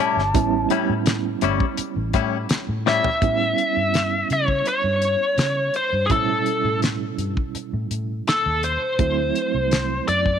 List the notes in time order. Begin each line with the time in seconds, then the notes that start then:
Already playing: B2 G3 C#4 E4 A5
0.00 A2 G3 C#4 E4
0.17 G1, snare
0.34 A1 G3 B3 C#4 E4, kick, closed hi-hat
0.70 A2 G3 C#4 E4, closed hi-hat
0.90 A2
1.06 snare, closed hi-hat
1.41 G1 A2 G3 C#4 E4, closed hi-hat
1.60 kick
1.77 muted fingered electric bass stroke, closed hi-hat
1.96 A1
2.13 A2 G3 C#4 E4, kick, closed hi-hat
2.49 snare, closed hi-hat
2.69 A2
2.86 A2 G3 C#4 E4 E5, snare
3.04 floor tom
3.22 A2 G3 B3 C#4 E4, kick, closed hi-hat
3.58 closed hi-hat
3.77 G2
3.94 snare, closed hi-hat
4.30 C#3 C#5, closed hi-hat
4.48 kick
4.66 C#5, closed hi-hat
4.84 G2
5.02 closed hi-hat
5.38 C#3, snare, closed hi-hat
5.74 C5, closed hi-hat
5.93 G2
6.06 G3 G#4, kick, closed hi-hat
6.10 A2 B2 C#4 E4 A4
6.46 closed hi-hat
6.64 A2
6.82 snare, closed hi-hat
7.18 G2, closed hi-hat
7.37 kick
7.55 muted fingered electric bass stroke, closed hi-hat
7.73 A2
7.91 A2, closed hi-hat
8.27 A4, snare, closed hi-hat
8.46 D#2
8.63 C5, closed hi-hat
8.99 D2 F#3 A3 C4 E4, kick, closed hi-hat
9.35 closed hi-hat
9.54 C2
9.71 snare, closed hi-hat
10.08 F#2 D5, closed hi-hat
10.26 kick